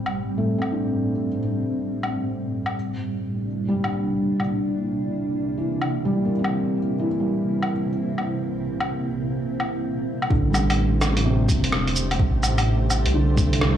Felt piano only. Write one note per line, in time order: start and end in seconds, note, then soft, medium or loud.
0.00 2.76 G3 medium
0.38 1.10 A3 soft
0.58 1.26 C4 soft
0.72 1.39 D4 soft
3.69 4.41 G3 medium
5.58 6.30 E3 medium
6.05 6.77 G3 medium
6.25 6.93 A#3 soft
6.39 7.06 C4 medium
6.99 7.72 E3 medium
7.20 7.87 G3 soft
10.30 11.03 D3 medium
10.51 11.18 G3 medium
11.25 11.97 C3 medium
13.14 13.77 D3 medium
13.34 13.77 G3 medium
13.47 13.77 A3 medium